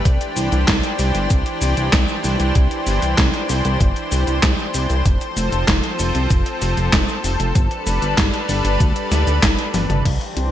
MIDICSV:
0, 0, Header, 1, 4, 480
1, 0, Start_track
1, 0, Key_signature, 0, "major"
1, 0, Tempo, 625000
1, 42, Time_signature, 4, 2, 24, 8
1, 8076, End_track
2, 0, Start_track
2, 0, Title_t, "Analog synth pad"
2, 0, Program_c, 0, 89
2, 0, Note_on_c, 0, 62, 73
2, 0, Note_on_c, 0, 67, 75
2, 42, Note_on_c, 0, 52, 81
2, 43, Note_on_c, 0, 72, 90
2, 3851, Note_off_c, 0, 52, 0
2, 3851, Note_off_c, 0, 62, 0
2, 3851, Note_off_c, 0, 67, 0
2, 3883, Note_on_c, 0, 53, 83
2, 3883, Note_on_c, 0, 60, 76
2, 3883, Note_on_c, 0, 69, 76
2, 5772, Note_off_c, 0, 72, 0
2, 5783, Note_off_c, 0, 53, 0
2, 5784, Note_off_c, 0, 60, 0
2, 5802, Note_on_c, 0, 62, 78
2, 5803, Note_on_c, 0, 55, 85
2, 5803, Note_on_c, 0, 71, 90
2, 7692, Note_off_c, 0, 69, 0
2, 7703, Note_off_c, 0, 55, 0
2, 7703, Note_off_c, 0, 62, 0
2, 7703, Note_off_c, 0, 71, 0
2, 7722, Note_on_c, 0, 62, 74
2, 7723, Note_on_c, 0, 52, 79
2, 7723, Note_on_c, 0, 67, 72
2, 7723, Note_on_c, 0, 72, 92
2, 8076, Note_off_c, 0, 52, 0
2, 8076, Note_off_c, 0, 62, 0
2, 8076, Note_off_c, 0, 67, 0
2, 8076, Note_off_c, 0, 72, 0
2, 8076, End_track
3, 0, Start_track
3, 0, Title_t, "Analog synth bass"
3, 0, Program_c, 1, 38
3, 41, Note_on_c, 1, 36, 104
3, 141, Note_off_c, 1, 36, 0
3, 282, Note_on_c, 1, 36, 97
3, 382, Note_off_c, 1, 36, 0
3, 401, Note_on_c, 1, 36, 77
3, 502, Note_off_c, 1, 36, 0
3, 521, Note_on_c, 1, 36, 106
3, 622, Note_off_c, 1, 36, 0
3, 762, Note_on_c, 1, 36, 92
3, 862, Note_off_c, 1, 36, 0
3, 881, Note_on_c, 1, 31, 82
3, 982, Note_off_c, 1, 31, 0
3, 1001, Note_on_c, 1, 36, 98
3, 1102, Note_off_c, 1, 36, 0
3, 1241, Note_on_c, 1, 36, 91
3, 1341, Note_off_c, 1, 36, 0
3, 1361, Note_on_c, 1, 36, 80
3, 1462, Note_off_c, 1, 36, 0
3, 1481, Note_on_c, 1, 36, 106
3, 1582, Note_off_c, 1, 36, 0
3, 1722, Note_on_c, 1, 36, 98
3, 1822, Note_off_c, 1, 36, 0
3, 1842, Note_on_c, 1, 36, 85
3, 1942, Note_off_c, 1, 36, 0
3, 1962, Note_on_c, 1, 36, 105
3, 2062, Note_off_c, 1, 36, 0
3, 2202, Note_on_c, 1, 31, 97
3, 2302, Note_off_c, 1, 31, 0
3, 2322, Note_on_c, 1, 36, 80
3, 2422, Note_off_c, 1, 36, 0
3, 2442, Note_on_c, 1, 36, 105
3, 2542, Note_off_c, 1, 36, 0
3, 2682, Note_on_c, 1, 36, 98
3, 2782, Note_off_c, 1, 36, 0
3, 2803, Note_on_c, 1, 36, 86
3, 2902, Note_off_c, 1, 36, 0
3, 2922, Note_on_c, 1, 31, 101
3, 3022, Note_off_c, 1, 31, 0
3, 3161, Note_on_c, 1, 36, 93
3, 3262, Note_off_c, 1, 36, 0
3, 3282, Note_on_c, 1, 36, 84
3, 3382, Note_off_c, 1, 36, 0
3, 3402, Note_on_c, 1, 36, 102
3, 3502, Note_off_c, 1, 36, 0
3, 3642, Note_on_c, 1, 36, 96
3, 3742, Note_off_c, 1, 36, 0
3, 3762, Note_on_c, 1, 36, 85
3, 3862, Note_off_c, 1, 36, 0
3, 3882, Note_on_c, 1, 29, 103
3, 3982, Note_off_c, 1, 29, 0
3, 4121, Note_on_c, 1, 29, 99
3, 4222, Note_off_c, 1, 29, 0
3, 4242, Note_on_c, 1, 29, 81
3, 4342, Note_off_c, 1, 29, 0
3, 4362, Note_on_c, 1, 29, 102
3, 4462, Note_off_c, 1, 29, 0
3, 4602, Note_on_c, 1, 29, 93
3, 4702, Note_off_c, 1, 29, 0
3, 4722, Note_on_c, 1, 36, 82
3, 4822, Note_off_c, 1, 36, 0
3, 4842, Note_on_c, 1, 29, 98
3, 4942, Note_off_c, 1, 29, 0
3, 5082, Note_on_c, 1, 29, 97
3, 5182, Note_off_c, 1, 29, 0
3, 5201, Note_on_c, 1, 29, 80
3, 5301, Note_off_c, 1, 29, 0
3, 5322, Note_on_c, 1, 29, 100
3, 5422, Note_off_c, 1, 29, 0
3, 5560, Note_on_c, 1, 29, 97
3, 5661, Note_off_c, 1, 29, 0
3, 5680, Note_on_c, 1, 29, 82
3, 5781, Note_off_c, 1, 29, 0
3, 5802, Note_on_c, 1, 31, 104
3, 5902, Note_off_c, 1, 31, 0
3, 6041, Note_on_c, 1, 29, 96
3, 6141, Note_off_c, 1, 29, 0
3, 6160, Note_on_c, 1, 31, 79
3, 6261, Note_off_c, 1, 31, 0
3, 6281, Note_on_c, 1, 31, 104
3, 6381, Note_off_c, 1, 31, 0
3, 6521, Note_on_c, 1, 31, 94
3, 6621, Note_off_c, 1, 31, 0
3, 6640, Note_on_c, 1, 31, 86
3, 6741, Note_off_c, 1, 31, 0
3, 6761, Note_on_c, 1, 38, 103
3, 6862, Note_off_c, 1, 38, 0
3, 7000, Note_on_c, 1, 38, 90
3, 7101, Note_off_c, 1, 38, 0
3, 7120, Note_on_c, 1, 38, 79
3, 7221, Note_off_c, 1, 38, 0
3, 7241, Note_on_c, 1, 31, 102
3, 7341, Note_off_c, 1, 31, 0
3, 7481, Note_on_c, 1, 31, 95
3, 7581, Note_off_c, 1, 31, 0
3, 7600, Note_on_c, 1, 31, 82
3, 7701, Note_off_c, 1, 31, 0
3, 7721, Note_on_c, 1, 36, 100
3, 7822, Note_off_c, 1, 36, 0
3, 7960, Note_on_c, 1, 36, 94
3, 8061, Note_off_c, 1, 36, 0
3, 8076, End_track
4, 0, Start_track
4, 0, Title_t, "Drums"
4, 41, Note_on_c, 9, 42, 77
4, 41, Note_on_c, 9, 82, 42
4, 42, Note_on_c, 9, 36, 120
4, 118, Note_off_c, 9, 36, 0
4, 118, Note_off_c, 9, 42, 0
4, 118, Note_off_c, 9, 82, 0
4, 161, Note_on_c, 9, 42, 36
4, 161, Note_on_c, 9, 82, 21
4, 237, Note_off_c, 9, 42, 0
4, 237, Note_off_c, 9, 82, 0
4, 281, Note_on_c, 9, 46, 80
4, 281, Note_on_c, 9, 82, 72
4, 358, Note_off_c, 9, 46, 0
4, 358, Note_off_c, 9, 82, 0
4, 401, Note_on_c, 9, 42, 53
4, 401, Note_on_c, 9, 82, 30
4, 478, Note_off_c, 9, 42, 0
4, 478, Note_off_c, 9, 82, 0
4, 521, Note_on_c, 9, 38, 121
4, 521, Note_on_c, 9, 39, 93
4, 521, Note_on_c, 9, 42, 74
4, 521, Note_on_c, 9, 82, 41
4, 522, Note_on_c, 9, 36, 116
4, 597, Note_off_c, 9, 38, 0
4, 597, Note_off_c, 9, 39, 0
4, 597, Note_off_c, 9, 42, 0
4, 597, Note_off_c, 9, 82, 0
4, 599, Note_off_c, 9, 36, 0
4, 640, Note_on_c, 9, 42, 35
4, 640, Note_on_c, 9, 82, 21
4, 717, Note_off_c, 9, 42, 0
4, 717, Note_off_c, 9, 82, 0
4, 760, Note_on_c, 9, 46, 80
4, 760, Note_on_c, 9, 82, 73
4, 837, Note_off_c, 9, 46, 0
4, 837, Note_off_c, 9, 82, 0
4, 881, Note_on_c, 9, 42, 50
4, 881, Note_on_c, 9, 82, 31
4, 958, Note_off_c, 9, 42, 0
4, 958, Note_off_c, 9, 82, 0
4, 1001, Note_on_c, 9, 42, 75
4, 1001, Note_on_c, 9, 82, 41
4, 1002, Note_on_c, 9, 36, 120
4, 1077, Note_off_c, 9, 42, 0
4, 1077, Note_off_c, 9, 82, 0
4, 1079, Note_off_c, 9, 36, 0
4, 1121, Note_on_c, 9, 42, 35
4, 1121, Note_on_c, 9, 82, 20
4, 1198, Note_off_c, 9, 42, 0
4, 1198, Note_off_c, 9, 82, 0
4, 1241, Note_on_c, 9, 46, 82
4, 1241, Note_on_c, 9, 82, 73
4, 1318, Note_off_c, 9, 46, 0
4, 1318, Note_off_c, 9, 82, 0
4, 1361, Note_on_c, 9, 42, 54
4, 1361, Note_on_c, 9, 82, 32
4, 1437, Note_off_c, 9, 42, 0
4, 1437, Note_off_c, 9, 82, 0
4, 1481, Note_on_c, 9, 38, 121
4, 1481, Note_on_c, 9, 39, 93
4, 1481, Note_on_c, 9, 42, 76
4, 1481, Note_on_c, 9, 82, 42
4, 1482, Note_on_c, 9, 36, 116
4, 1558, Note_off_c, 9, 38, 0
4, 1558, Note_off_c, 9, 39, 0
4, 1558, Note_off_c, 9, 42, 0
4, 1558, Note_off_c, 9, 82, 0
4, 1559, Note_off_c, 9, 36, 0
4, 1601, Note_on_c, 9, 82, 21
4, 1678, Note_off_c, 9, 82, 0
4, 1721, Note_on_c, 9, 46, 78
4, 1721, Note_on_c, 9, 82, 71
4, 1798, Note_off_c, 9, 46, 0
4, 1798, Note_off_c, 9, 82, 0
4, 1841, Note_on_c, 9, 42, 50
4, 1841, Note_on_c, 9, 82, 31
4, 1918, Note_off_c, 9, 42, 0
4, 1918, Note_off_c, 9, 82, 0
4, 1961, Note_on_c, 9, 42, 76
4, 1961, Note_on_c, 9, 82, 41
4, 1962, Note_on_c, 9, 36, 111
4, 2038, Note_off_c, 9, 42, 0
4, 2038, Note_off_c, 9, 82, 0
4, 2039, Note_off_c, 9, 36, 0
4, 2081, Note_on_c, 9, 42, 35
4, 2081, Note_on_c, 9, 82, 22
4, 2158, Note_off_c, 9, 42, 0
4, 2158, Note_off_c, 9, 82, 0
4, 2201, Note_on_c, 9, 46, 83
4, 2201, Note_on_c, 9, 82, 72
4, 2278, Note_off_c, 9, 46, 0
4, 2278, Note_off_c, 9, 82, 0
4, 2322, Note_on_c, 9, 42, 51
4, 2322, Note_on_c, 9, 82, 31
4, 2399, Note_off_c, 9, 42, 0
4, 2399, Note_off_c, 9, 82, 0
4, 2442, Note_on_c, 9, 36, 113
4, 2442, Note_on_c, 9, 38, 113
4, 2442, Note_on_c, 9, 39, 95
4, 2442, Note_on_c, 9, 42, 75
4, 2442, Note_on_c, 9, 82, 40
4, 2519, Note_off_c, 9, 36, 0
4, 2519, Note_off_c, 9, 38, 0
4, 2519, Note_off_c, 9, 39, 0
4, 2519, Note_off_c, 9, 42, 0
4, 2519, Note_off_c, 9, 82, 0
4, 2563, Note_on_c, 9, 42, 37
4, 2563, Note_on_c, 9, 82, 21
4, 2639, Note_off_c, 9, 42, 0
4, 2639, Note_off_c, 9, 82, 0
4, 2683, Note_on_c, 9, 46, 82
4, 2683, Note_on_c, 9, 82, 73
4, 2759, Note_off_c, 9, 46, 0
4, 2759, Note_off_c, 9, 82, 0
4, 2803, Note_on_c, 9, 42, 52
4, 2803, Note_on_c, 9, 82, 32
4, 2879, Note_off_c, 9, 42, 0
4, 2879, Note_off_c, 9, 82, 0
4, 2922, Note_on_c, 9, 36, 116
4, 2922, Note_on_c, 9, 42, 74
4, 2922, Note_on_c, 9, 82, 42
4, 2999, Note_off_c, 9, 36, 0
4, 2999, Note_off_c, 9, 42, 0
4, 2999, Note_off_c, 9, 82, 0
4, 3043, Note_on_c, 9, 42, 35
4, 3043, Note_on_c, 9, 82, 21
4, 3120, Note_off_c, 9, 42, 0
4, 3120, Note_off_c, 9, 82, 0
4, 3162, Note_on_c, 9, 46, 85
4, 3162, Note_on_c, 9, 82, 74
4, 3239, Note_off_c, 9, 46, 0
4, 3239, Note_off_c, 9, 82, 0
4, 3282, Note_on_c, 9, 42, 52
4, 3282, Note_on_c, 9, 82, 32
4, 3359, Note_off_c, 9, 42, 0
4, 3359, Note_off_c, 9, 82, 0
4, 3402, Note_on_c, 9, 36, 114
4, 3402, Note_on_c, 9, 38, 117
4, 3402, Note_on_c, 9, 39, 99
4, 3402, Note_on_c, 9, 42, 76
4, 3402, Note_on_c, 9, 82, 43
4, 3478, Note_off_c, 9, 38, 0
4, 3478, Note_off_c, 9, 39, 0
4, 3478, Note_off_c, 9, 42, 0
4, 3478, Note_off_c, 9, 82, 0
4, 3479, Note_off_c, 9, 36, 0
4, 3522, Note_on_c, 9, 82, 22
4, 3599, Note_off_c, 9, 82, 0
4, 3642, Note_on_c, 9, 46, 83
4, 3642, Note_on_c, 9, 82, 75
4, 3719, Note_off_c, 9, 46, 0
4, 3719, Note_off_c, 9, 82, 0
4, 3762, Note_on_c, 9, 42, 50
4, 3762, Note_on_c, 9, 82, 31
4, 3839, Note_off_c, 9, 42, 0
4, 3839, Note_off_c, 9, 82, 0
4, 3882, Note_on_c, 9, 42, 76
4, 3882, Note_on_c, 9, 82, 41
4, 3883, Note_on_c, 9, 36, 110
4, 3959, Note_off_c, 9, 36, 0
4, 3959, Note_off_c, 9, 42, 0
4, 3959, Note_off_c, 9, 82, 0
4, 4003, Note_on_c, 9, 42, 35
4, 4003, Note_on_c, 9, 82, 21
4, 4079, Note_off_c, 9, 42, 0
4, 4079, Note_off_c, 9, 82, 0
4, 4123, Note_on_c, 9, 46, 84
4, 4123, Note_on_c, 9, 82, 69
4, 4199, Note_off_c, 9, 46, 0
4, 4199, Note_off_c, 9, 82, 0
4, 4243, Note_on_c, 9, 42, 53
4, 4243, Note_on_c, 9, 82, 30
4, 4319, Note_off_c, 9, 42, 0
4, 4319, Note_off_c, 9, 82, 0
4, 4362, Note_on_c, 9, 36, 107
4, 4362, Note_on_c, 9, 38, 111
4, 4362, Note_on_c, 9, 39, 95
4, 4362, Note_on_c, 9, 42, 78
4, 4362, Note_on_c, 9, 82, 41
4, 4439, Note_off_c, 9, 36, 0
4, 4439, Note_off_c, 9, 38, 0
4, 4439, Note_off_c, 9, 39, 0
4, 4439, Note_off_c, 9, 42, 0
4, 4439, Note_off_c, 9, 82, 0
4, 4482, Note_on_c, 9, 42, 36
4, 4482, Note_on_c, 9, 82, 20
4, 4559, Note_off_c, 9, 42, 0
4, 4559, Note_off_c, 9, 82, 0
4, 4602, Note_on_c, 9, 46, 82
4, 4602, Note_on_c, 9, 82, 72
4, 4678, Note_off_c, 9, 46, 0
4, 4678, Note_off_c, 9, 82, 0
4, 4722, Note_on_c, 9, 42, 52
4, 4722, Note_on_c, 9, 82, 31
4, 4799, Note_off_c, 9, 42, 0
4, 4799, Note_off_c, 9, 82, 0
4, 4841, Note_on_c, 9, 42, 75
4, 4841, Note_on_c, 9, 82, 39
4, 4842, Note_on_c, 9, 36, 117
4, 4918, Note_off_c, 9, 42, 0
4, 4918, Note_off_c, 9, 82, 0
4, 4919, Note_off_c, 9, 36, 0
4, 4962, Note_on_c, 9, 42, 36
4, 4962, Note_on_c, 9, 82, 21
4, 5039, Note_off_c, 9, 42, 0
4, 5039, Note_off_c, 9, 82, 0
4, 5081, Note_on_c, 9, 46, 84
4, 5081, Note_on_c, 9, 82, 72
4, 5158, Note_off_c, 9, 46, 0
4, 5158, Note_off_c, 9, 82, 0
4, 5202, Note_on_c, 9, 42, 53
4, 5202, Note_on_c, 9, 82, 31
4, 5278, Note_off_c, 9, 42, 0
4, 5278, Note_off_c, 9, 82, 0
4, 5322, Note_on_c, 9, 36, 112
4, 5322, Note_on_c, 9, 38, 113
4, 5322, Note_on_c, 9, 39, 97
4, 5322, Note_on_c, 9, 42, 79
4, 5322, Note_on_c, 9, 82, 42
4, 5399, Note_off_c, 9, 36, 0
4, 5399, Note_off_c, 9, 38, 0
4, 5399, Note_off_c, 9, 39, 0
4, 5399, Note_off_c, 9, 42, 0
4, 5399, Note_off_c, 9, 82, 0
4, 5442, Note_on_c, 9, 82, 20
4, 5519, Note_off_c, 9, 82, 0
4, 5562, Note_on_c, 9, 46, 85
4, 5562, Note_on_c, 9, 82, 72
4, 5639, Note_off_c, 9, 46, 0
4, 5639, Note_off_c, 9, 82, 0
4, 5682, Note_on_c, 9, 42, 53
4, 5682, Note_on_c, 9, 82, 31
4, 5759, Note_off_c, 9, 42, 0
4, 5759, Note_off_c, 9, 82, 0
4, 5802, Note_on_c, 9, 36, 115
4, 5802, Note_on_c, 9, 42, 83
4, 5802, Note_on_c, 9, 82, 38
4, 5878, Note_off_c, 9, 36, 0
4, 5878, Note_off_c, 9, 42, 0
4, 5878, Note_off_c, 9, 82, 0
4, 5921, Note_on_c, 9, 42, 38
4, 5921, Note_on_c, 9, 82, 20
4, 5998, Note_off_c, 9, 42, 0
4, 5998, Note_off_c, 9, 82, 0
4, 6042, Note_on_c, 9, 46, 82
4, 6042, Note_on_c, 9, 82, 70
4, 6118, Note_off_c, 9, 46, 0
4, 6118, Note_off_c, 9, 82, 0
4, 6162, Note_on_c, 9, 42, 54
4, 6162, Note_on_c, 9, 82, 30
4, 6238, Note_off_c, 9, 42, 0
4, 6238, Note_off_c, 9, 82, 0
4, 6281, Note_on_c, 9, 36, 116
4, 6281, Note_on_c, 9, 38, 111
4, 6281, Note_on_c, 9, 39, 100
4, 6281, Note_on_c, 9, 42, 77
4, 6281, Note_on_c, 9, 82, 39
4, 6358, Note_off_c, 9, 36, 0
4, 6358, Note_off_c, 9, 38, 0
4, 6358, Note_off_c, 9, 39, 0
4, 6358, Note_off_c, 9, 42, 0
4, 6358, Note_off_c, 9, 82, 0
4, 6402, Note_on_c, 9, 42, 37
4, 6402, Note_on_c, 9, 82, 20
4, 6479, Note_off_c, 9, 42, 0
4, 6479, Note_off_c, 9, 82, 0
4, 6521, Note_on_c, 9, 46, 83
4, 6521, Note_on_c, 9, 82, 70
4, 6598, Note_off_c, 9, 46, 0
4, 6598, Note_off_c, 9, 82, 0
4, 6641, Note_on_c, 9, 42, 56
4, 6641, Note_on_c, 9, 82, 30
4, 6718, Note_off_c, 9, 42, 0
4, 6718, Note_off_c, 9, 82, 0
4, 6761, Note_on_c, 9, 36, 117
4, 6761, Note_on_c, 9, 42, 78
4, 6761, Note_on_c, 9, 82, 40
4, 6838, Note_off_c, 9, 36, 0
4, 6838, Note_off_c, 9, 42, 0
4, 6838, Note_off_c, 9, 82, 0
4, 6881, Note_on_c, 9, 42, 37
4, 6881, Note_on_c, 9, 82, 20
4, 6958, Note_off_c, 9, 42, 0
4, 6958, Note_off_c, 9, 82, 0
4, 7001, Note_on_c, 9, 38, 58
4, 7001, Note_on_c, 9, 46, 83
4, 7001, Note_on_c, 9, 82, 72
4, 7078, Note_off_c, 9, 38, 0
4, 7078, Note_off_c, 9, 46, 0
4, 7078, Note_off_c, 9, 82, 0
4, 7122, Note_on_c, 9, 42, 55
4, 7122, Note_on_c, 9, 82, 30
4, 7199, Note_off_c, 9, 42, 0
4, 7199, Note_off_c, 9, 82, 0
4, 7241, Note_on_c, 9, 36, 117
4, 7242, Note_on_c, 9, 38, 117
4, 7242, Note_on_c, 9, 39, 100
4, 7242, Note_on_c, 9, 42, 85
4, 7242, Note_on_c, 9, 82, 39
4, 7318, Note_off_c, 9, 36, 0
4, 7319, Note_off_c, 9, 38, 0
4, 7319, Note_off_c, 9, 39, 0
4, 7319, Note_off_c, 9, 42, 0
4, 7319, Note_off_c, 9, 82, 0
4, 7362, Note_on_c, 9, 42, 39
4, 7362, Note_on_c, 9, 82, 20
4, 7439, Note_off_c, 9, 42, 0
4, 7439, Note_off_c, 9, 82, 0
4, 7481, Note_on_c, 9, 46, 82
4, 7481, Note_on_c, 9, 48, 63
4, 7481, Note_on_c, 9, 82, 69
4, 7558, Note_off_c, 9, 46, 0
4, 7558, Note_off_c, 9, 48, 0
4, 7558, Note_off_c, 9, 82, 0
4, 7602, Note_on_c, 9, 42, 52
4, 7602, Note_on_c, 9, 47, 73
4, 7602, Note_on_c, 9, 82, 29
4, 7679, Note_off_c, 9, 42, 0
4, 7679, Note_off_c, 9, 47, 0
4, 7679, Note_off_c, 9, 82, 0
4, 7722, Note_on_c, 9, 36, 107
4, 7722, Note_on_c, 9, 42, 79
4, 7722, Note_on_c, 9, 49, 84
4, 7798, Note_off_c, 9, 36, 0
4, 7799, Note_off_c, 9, 42, 0
4, 7799, Note_off_c, 9, 49, 0
4, 7842, Note_on_c, 9, 42, 36
4, 7919, Note_off_c, 9, 42, 0
4, 7962, Note_on_c, 9, 42, 79
4, 8038, Note_off_c, 9, 42, 0
4, 8076, End_track
0, 0, End_of_file